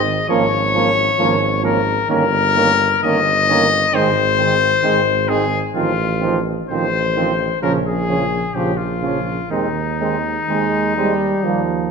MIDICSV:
0, 0, Header, 1, 6, 480
1, 0, Start_track
1, 0, Key_signature, -4, "major"
1, 0, Tempo, 907716
1, 1108, Time_signature, 4, 2, 24, 8
1, 3039, Tempo, 934579
1, 4479, Tempo, 966184
1, 6147, End_track
2, 0, Start_track
2, 0, Title_t, "Trumpet"
2, 0, Program_c, 0, 56
2, 0, Note_on_c, 0, 75, 108
2, 149, Note_off_c, 0, 75, 0
2, 153, Note_on_c, 0, 73, 106
2, 853, Note_off_c, 0, 73, 0
2, 872, Note_on_c, 0, 70, 86
2, 1104, Note_off_c, 0, 70, 0
2, 1112, Note_on_c, 0, 70, 109
2, 1598, Note_off_c, 0, 70, 0
2, 1604, Note_on_c, 0, 75, 110
2, 2088, Note_on_c, 0, 72, 109
2, 2096, Note_off_c, 0, 75, 0
2, 2798, Note_on_c, 0, 68, 85
2, 2806, Note_off_c, 0, 72, 0
2, 2965, Note_off_c, 0, 68, 0
2, 3035, Note_on_c, 0, 65, 90
2, 3370, Note_off_c, 0, 65, 0
2, 3526, Note_on_c, 0, 72, 103
2, 3980, Note_off_c, 0, 72, 0
2, 4002, Note_on_c, 0, 70, 78
2, 4055, Note_off_c, 0, 70, 0
2, 4124, Note_on_c, 0, 68, 85
2, 4480, Note_on_c, 0, 67, 73
2, 4487, Note_off_c, 0, 68, 0
2, 4589, Note_on_c, 0, 65, 72
2, 4596, Note_off_c, 0, 67, 0
2, 4952, Note_off_c, 0, 65, 0
2, 4957, Note_on_c, 0, 63, 83
2, 6147, Note_off_c, 0, 63, 0
2, 6147, End_track
3, 0, Start_track
3, 0, Title_t, "Flugelhorn"
3, 0, Program_c, 1, 56
3, 157, Note_on_c, 1, 61, 66
3, 242, Note_off_c, 1, 61, 0
3, 397, Note_on_c, 1, 61, 60
3, 481, Note_off_c, 1, 61, 0
3, 639, Note_on_c, 1, 61, 63
3, 724, Note_off_c, 1, 61, 0
3, 862, Note_on_c, 1, 61, 58
3, 947, Note_off_c, 1, 61, 0
3, 1106, Note_on_c, 1, 61, 64
3, 1190, Note_off_c, 1, 61, 0
3, 1356, Note_on_c, 1, 61, 53
3, 1440, Note_off_c, 1, 61, 0
3, 1608, Note_on_c, 1, 61, 59
3, 1693, Note_off_c, 1, 61, 0
3, 1843, Note_on_c, 1, 61, 61
3, 1928, Note_off_c, 1, 61, 0
3, 2076, Note_on_c, 1, 60, 63
3, 2161, Note_off_c, 1, 60, 0
3, 2313, Note_on_c, 1, 60, 57
3, 2398, Note_off_c, 1, 60, 0
3, 2558, Note_on_c, 1, 60, 60
3, 2643, Note_off_c, 1, 60, 0
3, 2790, Note_on_c, 1, 60, 56
3, 2874, Note_off_c, 1, 60, 0
3, 3037, Note_on_c, 1, 60, 56
3, 3119, Note_off_c, 1, 60, 0
3, 3274, Note_on_c, 1, 60, 52
3, 3357, Note_off_c, 1, 60, 0
3, 3527, Note_on_c, 1, 60, 54
3, 3609, Note_off_c, 1, 60, 0
3, 3770, Note_on_c, 1, 60, 59
3, 3852, Note_off_c, 1, 60, 0
3, 4010, Note_on_c, 1, 61, 59
3, 4092, Note_off_c, 1, 61, 0
3, 4244, Note_on_c, 1, 61, 50
3, 4326, Note_off_c, 1, 61, 0
3, 4485, Note_on_c, 1, 61, 52
3, 4564, Note_off_c, 1, 61, 0
3, 4725, Note_on_c, 1, 61, 49
3, 4804, Note_off_c, 1, 61, 0
3, 4958, Note_on_c, 1, 60, 54
3, 5038, Note_off_c, 1, 60, 0
3, 5202, Note_on_c, 1, 60, 45
3, 5282, Note_off_c, 1, 60, 0
3, 5437, Note_on_c, 1, 60, 48
3, 5517, Note_off_c, 1, 60, 0
3, 5684, Note_on_c, 1, 60, 50
3, 5764, Note_off_c, 1, 60, 0
3, 5912, Note_on_c, 1, 58, 52
3, 5992, Note_off_c, 1, 58, 0
3, 6147, End_track
4, 0, Start_track
4, 0, Title_t, "French horn"
4, 0, Program_c, 2, 60
4, 159, Note_on_c, 2, 58, 65
4, 244, Note_off_c, 2, 58, 0
4, 397, Note_on_c, 2, 58, 56
4, 482, Note_off_c, 2, 58, 0
4, 634, Note_on_c, 2, 58, 65
4, 718, Note_off_c, 2, 58, 0
4, 869, Note_on_c, 2, 58, 60
4, 954, Note_off_c, 2, 58, 0
4, 1106, Note_on_c, 2, 58, 62
4, 1190, Note_off_c, 2, 58, 0
4, 1355, Note_on_c, 2, 58, 58
4, 1440, Note_off_c, 2, 58, 0
4, 1605, Note_on_c, 2, 58, 60
4, 1689, Note_off_c, 2, 58, 0
4, 1856, Note_on_c, 2, 58, 60
4, 1940, Note_off_c, 2, 58, 0
4, 2089, Note_on_c, 2, 56, 64
4, 2174, Note_off_c, 2, 56, 0
4, 2330, Note_on_c, 2, 56, 52
4, 2414, Note_off_c, 2, 56, 0
4, 2564, Note_on_c, 2, 56, 61
4, 2648, Note_off_c, 2, 56, 0
4, 2804, Note_on_c, 2, 56, 57
4, 2889, Note_off_c, 2, 56, 0
4, 3045, Note_on_c, 2, 53, 59
4, 3127, Note_off_c, 2, 53, 0
4, 3290, Note_on_c, 2, 53, 58
4, 3372, Note_off_c, 2, 53, 0
4, 3534, Note_on_c, 2, 53, 54
4, 3617, Note_off_c, 2, 53, 0
4, 3768, Note_on_c, 2, 53, 49
4, 3851, Note_off_c, 2, 53, 0
4, 4002, Note_on_c, 2, 53, 56
4, 4085, Note_off_c, 2, 53, 0
4, 4240, Note_on_c, 2, 53, 49
4, 4322, Note_off_c, 2, 53, 0
4, 4482, Note_on_c, 2, 53, 53
4, 4561, Note_off_c, 2, 53, 0
4, 4718, Note_on_c, 2, 53, 49
4, 4798, Note_off_c, 2, 53, 0
4, 4956, Note_on_c, 2, 56, 52
4, 5036, Note_off_c, 2, 56, 0
4, 5203, Note_on_c, 2, 56, 46
4, 5283, Note_off_c, 2, 56, 0
4, 5446, Note_on_c, 2, 56, 50
4, 5526, Note_off_c, 2, 56, 0
4, 5686, Note_on_c, 2, 56, 47
4, 5765, Note_off_c, 2, 56, 0
4, 5920, Note_on_c, 2, 55, 52
4, 6000, Note_off_c, 2, 55, 0
4, 6147, End_track
5, 0, Start_track
5, 0, Title_t, "Trombone"
5, 0, Program_c, 3, 57
5, 150, Note_on_c, 3, 53, 65
5, 235, Note_off_c, 3, 53, 0
5, 388, Note_on_c, 3, 53, 56
5, 472, Note_off_c, 3, 53, 0
5, 625, Note_on_c, 3, 53, 60
5, 709, Note_off_c, 3, 53, 0
5, 861, Note_on_c, 3, 53, 62
5, 946, Note_off_c, 3, 53, 0
5, 1101, Note_on_c, 3, 51, 67
5, 1185, Note_off_c, 3, 51, 0
5, 1347, Note_on_c, 3, 51, 59
5, 1431, Note_off_c, 3, 51, 0
5, 1603, Note_on_c, 3, 51, 60
5, 1687, Note_off_c, 3, 51, 0
5, 1842, Note_on_c, 3, 51, 62
5, 1926, Note_off_c, 3, 51, 0
5, 2079, Note_on_c, 3, 51, 64
5, 2164, Note_off_c, 3, 51, 0
5, 2321, Note_on_c, 3, 51, 57
5, 2406, Note_off_c, 3, 51, 0
5, 2551, Note_on_c, 3, 51, 61
5, 2635, Note_off_c, 3, 51, 0
5, 2795, Note_on_c, 3, 51, 57
5, 2880, Note_off_c, 3, 51, 0
5, 3040, Note_on_c, 3, 51, 61
5, 3122, Note_off_c, 3, 51, 0
5, 3283, Note_on_c, 3, 51, 53
5, 3365, Note_off_c, 3, 51, 0
5, 3527, Note_on_c, 3, 51, 57
5, 3609, Note_off_c, 3, 51, 0
5, 3760, Note_on_c, 3, 51, 53
5, 3843, Note_off_c, 3, 51, 0
5, 3999, Note_on_c, 3, 49, 61
5, 4081, Note_off_c, 3, 49, 0
5, 4236, Note_on_c, 3, 49, 49
5, 4319, Note_off_c, 3, 49, 0
5, 4478, Note_on_c, 3, 49, 53
5, 4557, Note_off_c, 3, 49, 0
5, 4707, Note_on_c, 3, 49, 51
5, 4787, Note_off_c, 3, 49, 0
5, 4951, Note_on_c, 3, 51, 55
5, 5031, Note_off_c, 3, 51, 0
5, 5200, Note_on_c, 3, 51, 46
5, 5279, Note_off_c, 3, 51, 0
5, 5439, Note_on_c, 3, 56, 73
5, 5663, Note_off_c, 3, 56, 0
5, 5677, Note_on_c, 3, 55, 73
5, 5914, Note_on_c, 3, 53, 68
5, 5922, Note_off_c, 3, 55, 0
5, 6147, Note_off_c, 3, 53, 0
5, 6147, End_track
6, 0, Start_track
6, 0, Title_t, "Tuba"
6, 0, Program_c, 4, 58
6, 0, Note_on_c, 4, 32, 71
6, 100, Note_off_c, 4, 32, 0
6, 157, Note_on_c, 4, 32, 77
6, 576, Note_off_c, 4, 32, 0
6, 634, Note_on_c, 4, 32, 74
6, 1052, Note_off_c, 4, 32, 0
6, 1111, Note_on_c, 4, 31, 81
6, 1549, Note_off_c, 4, 31, 0
6, 1605, Note_on_c, 4, 31, 73
6, 2031, Note_off_c, 4, 31, 0
6, 2091, Note_on_c, 4, 32, 75
6, 2508, Note_off_c, 4, 32, 0
6, 2562, Note_on_c, 4, 32, 71
6, 2980, Note_off_c, 4, 32, 0
6, 3038, Note_on_c, 4, 33, 76
6, 3470, Note_off_c, 4, 33, 0
6, 3528, Note_on_c, 4, 33, 69
6, 3946, Note_off_c, 4, 33, 0
6, 4001, Note_on_c, 4, 34, 72
6, 4420, Note_off_c, 4, 34, 0
6, 4478, Note_on_c, 4, 34, 62
6, 4898, Note_off_c, 4, 34, 0
6, 4954, Note_on_c, 4, 39, 65
6, 5384, Note_off_c, 4, 39, 0
6, 5441, Note_on_c, 4, 39, 58
6, 5862, Note_off_c, 4, 39, 0
6, 5913, Note_on_c, 4, 39, 63
6, 6147, Note_off_c, 4, 39, 0
6, 6147, End_track
0, 0, End_of_file